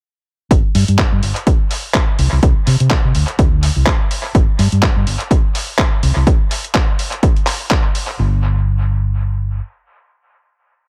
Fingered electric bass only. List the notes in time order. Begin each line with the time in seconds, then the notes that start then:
0.51 G1
0.75 G2
0.88 G2
1.12 G2
1.23 G1
2.19 C2
2.32 C2
2.43 C2
2.67 C3
2.80 C3
3.04 C3
3.15 D2
3.39 D2
3.76 C2
4.35 G1
4.59 G2
4.72 G2
4.96 G2
5.07 G1
6.03 C2
6.16 C2
8.19 G1